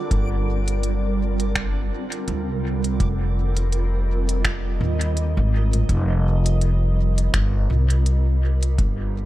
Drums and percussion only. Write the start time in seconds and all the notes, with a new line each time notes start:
0.11 kick, closed hi-hat
0.68 closed hi-hat
0.83 closed hi-hat
1.40 closed hi-hat
1.56 finger snap, kick, closed hi-hat
2.12 closed hi-hat
2.28 closed hi-hat
2.84 closed hi-hat
3.00 kick, closed hi-hat
3.57 closed hi-hat
3.72 closed hi-hat
4.29 closed hi-hat
4.45 finger snap, kick, closed hi-hat
4.81 mid tom
5.01 closed hi-hat
5.17 closed hi-hat
5.73 closed hi-hat, mid tom
5.89 kick, closed hi-hat
6.46 closed hi-hat
6.61 closed hi-hat
7.18 closed hi-hat
7.34 finger snap, kick, closed hi-hat
7.70 mid tom
7.90 closed hi-hat
8.06 closed hi-hat
8.63 closed hi-hat
8.78 kick, closed hi-hat